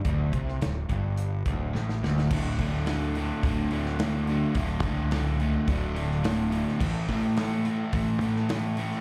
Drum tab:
CC |----------------|x---------------|----------------|x---------------|
HH |x-x-x-x-x-x-----|--o-o-o-o-o-o-o-|o-o-o-o-o-o-o-o-|--o-o-o-o-o-o-o-|
SD |---oo-------oooo|----o------oo---|----o------oo--o|----o------oo--o|
BD |o-o---o---o-----|o-o-----o-------|o-o-----o-------|o-o-----o-------|